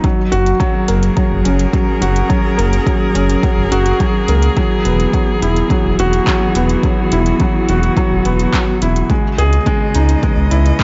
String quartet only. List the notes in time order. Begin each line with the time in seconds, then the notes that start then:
Already playing: D#4 F#4
0.04 F#3
0.24 A#4
0.59 C#4
0.67 G#4
4.56 E3
4.65 B3
4.73 F#4
9.09 C#3
9.33 C#4 D#5
10.18 E3